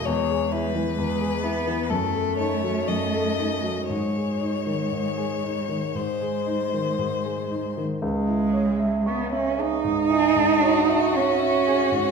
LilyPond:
<<
  \new Staff \with { instrumentName = "Violin" } { \time 4/4 \key cis \minor \tempo 4 = 58 cis''8 b'4. a'8 cis''8 dis''4 | cis''2 bis'2 | r2 gis'8 fis'4. | }
  \new Staff \with { instrumentName = "Grand piano" } { \time 4/4 \key cis \minor e,16 gis'16 e'16 e16 e,16 gis'16 e'16 e16 fis,16 a'16 dis'16 fis16 fis,16 a'16 dis'16 fis16 | gis,16 gis'16 dis'16 dis16 gis,16 gis'16 dis'16 dis16 gis,16 gis'16 dis'16 dis16 gis,16 gis'16 dis'16 dis16 | cis,16 e'16 cis''16 e''16 cis'''16 e''16 gis'16 gis,16 e'16 gis,16 cis''16 e''16 cis'''16 e''16 gis'16 gis,16 | }
  \new Staff \with { instrumentName = "Cello" } { \time 4/4 \key cis \minor gis4 gis8 b8 a2 | gis2 gis2 | gis4 b16 cis'16 dis'4. cis'4 | }
>>